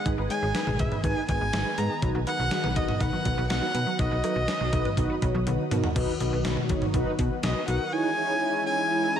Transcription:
Already playing: analog synth pad D#3 G#3 B3 G#4
0.06 fm bass G#1, analog polysynth D#4 G#4 B4, synth arpeggio sound G#4, kick, closed hi-hat
0.18 fm bass G#1, synth arpeggio sound B4
0.30 synth arpeggio sound G#3, analog polysynth D#4 G#4 C#5, erhu G#5, closed hi-hat
0.42 fm bass G#1, synth arpeggio sound G#4
0.55 analog polysynth D#4 G#4 B4, synth arpeggio sound B4, snare, closed hi-hat
0.67 fm bass G#1, synth arpeggio sound G#3, mid tom
0.79 fm bass G#1, analog polysynth D#4 G#4 B4, erhu E5, kick, closed hi-hat
0.92 synth arpeggio sound B4, mid tom
1.04 fm bass G#1, analog polysynth D#4 G#4 B4, erhu G#5, kick, closed hi-hat
1.16 synth arpeggio sound G#4
1.29 fm bass G#1, analog polysynth D#4 G#4 B4, synth arpeggio sound B4, erhu G#5, kick, closed hi-hat
1.41 fm bass G#1, synth arpeggio sound G#3
1.53 fm bass G#1, analog polysynth D#4 G#4 B4, synth arpeggio sound G#4, snare, closed hi-hat
1.78 fm bass G#2, synth arpeggio sound G#3, analog polysynth D#4 G#4 B4, erhu A#5, closed hi-hat
1.90 synth arpeggio sound G#4
2.02 fm bass B1, synth arpeggio sound F#3, analog synth pad F#3 F#4, analog polysynth D#4 F#4 B4, kick, closed hi-hat
2.15 fm bass B1, synth arpeggio sound F#4
2.27 analog polysynth D#4 F#4 B4, synth arpeggio sound B4, erhu F#5, closed hi-hat
2.39 fm bass B1, synth arpeggio sound F#3
2.51 analog polysynth D#4 F#4 G#4, synth arpeggio sound F#4, snare, closed hi-hat
2.64 fm bass B1, synth arpeggio sound B4, mid tom
2.76 fm bass B1, synth arpeggio sound F#3, analog polysynth D#4 F#4 B4, erhu D#5, kick, closed hi-hat
2.89 synth arpeggio sound F#4, mid tom
3.00 fm bass B1, analog polysynth D#4 F#4 B4, synth arpeggio sound B4, erhu F#5, kick, closed hi-hat
3.13 synth arpeggio sound F#3
3.25 fm bass B1, analog polysynth D#4 F#4 B4, synth arpeggio sound F#4, kick, closed hi-hat
3.38 fm bass B1, synth arpeggio sound B4
3.50 fm bass B1, synth arpeggio sound F#3, analog polysynth D#4 F#4 B4, erhu F#5, snare, closed hi-hat
3.62 synth arpeggio sound F#4
3.75 fm bass B2, analog polysynth D#4 F#4 B4, synth arpeggio sound B4, closed hi-hat
3.87 synth arpeggio sound F#3
3.99 fm bass B1, analog polysynth D#4 F#4 B4, synth arpeggio sound F#4, erhu D#5, kick, closed hi-hat
4.11 fm bass B1, synth arpeggio sound B4
4.24 synth arpeggio sound F#3, analog polysynth D#4 F#4 B4, closed hi-hat, cowbell
4.36 fm bass B1, synth arpeggio sound F#4
4.48 analog polysynth D#4 F#4 B4, synth arpeggio sound B4, snare, closed hi-hat
4.61 fm bass B1, synth arpeggio sound F#3
4.73 fm bass B1, analog polysynth D#4 F#4 B4, kick, closed hi-hat, cowbell
4.85 synth arpeggio sound B4, mid tom
4.97 fm bass B1, analog polysynth D#4 F#4 B4, kick, closed hi-hat
5.10 synth arpeggio sound F#4
5.22 fm bass B1, analog polysynth D#4 F#4 C#5, synth arpeggio sound B4, kick, closed hi-hat
5.34 fm bass B1, synth arpeggio sound F#3
5.47 fm bass B1, analog polysynth D#4 F#4 B4, synth arpeggio sound F#4, closed hi-hat, high tom
5.71 fm bass B2, synth arpeggio sound F#3, analog polysynth D#4 F#4 A#4, closed hi-hat, mid tom
5.84 synth arpeggio sound F#4, floor tom
5.96 fm bass B1, analog synth pad D#3 F#3 B3 F#4, analog polysynth D#4 F#4 B4, kick, closed hi-hat, crash
6.20 fm bass B1, analog polysynth D#4 F#4 B4, closed hi-hat
6.33 fm bass B1
6.45 fm bass B1, analog polysynth D#4 F#4 B4, snare, closed hi-hat
6.57 mid tom
6.69 fm bass B1, analog polysynth D#4 F#4 C#5, kick, closed hi-hat
6.82 mid tom
6.94 fm bass B1, analog polysynth D#4 F#4 B4, kick, closed hi-hat
7.19 fm bass B2, analog polysynth D#4 F#4 B4, kick, closed hi-hat
7.43 fm bass B1, analog polysynth D#4 F#4 B4, erhu D#5, snare, closed hi-hat
7.68 fm bass B1, analog polysynth D#4 F#4 A#4, erhu F#5, closed hi-hat
7.93 analog synth pad E3 G#3 C#4 E4, analog polysynth D#4 E4 G#4 C#5, erhu G#5
8.17 analog polysynth D#4 E4 G#4 C#5
8.42 analog polysynth D#4 E4 G#4 C#5
8.66 analog polysynth D#4 E4 G#4 C#5, erhu G#5
8.91 analog polysynth D#4 E4 G#4 C#5
9.15 analog polysynth D#4 E4 G#4 C#5, erhu A#5

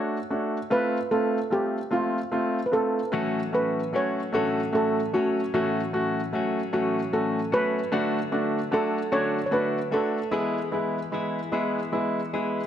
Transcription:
Already playing: grand piano A3 D4 F#4, steel pan C#5
0.30 grand piano A3 D4 F#4
0.70 grand piano A3 C4 F4, steel pan B4
1.11 grand piano A3 C4 F4, steel pan A4
1.50 grand piano A3 C4 F4, steel pan G4
1.91 grand piano A3 C4 F4, steel pan F4
2.32 grand piano A3 C4 F4
2.66 steel pan B4
2.72 grand piano A3 C4 F4, steel pan A4
3.12 clean electric guitar A2 E3 F#3 A3 C#4 F#4, grand piano A3 C#4 F#4
3.53 grand piano A3 C#4 F#4, steel pan B4
3.93 clean electric guitar F#3 A3 C#4 F#4, grand piano A3 C#4 F#4, steel pan C#5
4.33 clean electric guitar A2 E3 F#3 A3 C#4 F#4, grand piano A3 C#4 F#4, steel pan A4
4.73 grand piano A3 C#4 F#4, steel pan A4
5.13 clean electric guitar F#3 A3 C#4 F#4, grand piano A3 C#4 F#4, steel pan F#4
5.54 clean electric guitar A2 E3 F#3 A3 C#4 F#4, grand piano A3 C#4 F#4, steel pan F#4
5.93 grand piano A3 C#4 F#4
6.33 clean electric guitar F#3 A3 C#4 F#4, grand piano A3 C#4 F#4
6.73 clean electric guitar A2 E3 F#3 A3 C#4 F#4, grand piano A3 C#4 F#4, steel pan F#4
7.13 grand piano A3 C#4 F#4, steel pan A4
7.52 clean electric guitar F#3 A3 C#4 F#4, grand piano A3 C#4 F#4, steel pan B4
7.92 clean electric guitar D3 F#3 A3 D4 F#4, grand piano A3 D4 F#4
8.32 grand piano A3 D4 F#4
8.71 clean electric guitar F#3 A3 D4 F#4, grand piano A3 D4 F#4, steel pan A4
9.12 clean electric guitar D3 F#3 A3 D4 F#4, grand piano A3 D4 F#4, steel pan C#5
9.46 steel pan C#5
9.51 grand piano A3 D4 F#4, steel pan B4
9.91 grand piano A3 D4 F#4, clean electric guitar A3 D4 F#4, steel pan A4
10.31 clean electric guitar E3 B3 E4 G#4, grand piano G#3 B3 E4, steel pan G#4
10.71 grand piano G#3 B3 E4
11.12 clean electric guitar E3 B3 E4 G#4, grand piano G#3 B3 E4
11.52 clean electric guitar E3 B3 E4 G#4, grand piano G#3 B3 E4
11.92 grand piano G#3 B3 E4
12.33 grand piano G#3 B3 E4, clean electric guitar B3 E4 G#4

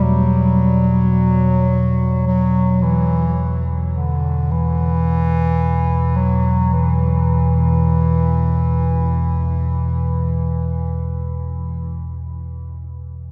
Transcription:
Already playing: synth drone E2 B2
0.02 bass clarinet F#3
2.27 bass clarinet F#3
2.82 bass clarinet E3
3.93 bass clarinet D3
4.51 bass clarinet E3
6.16 bass clarinet F#3
6.73 bass clarinet E3

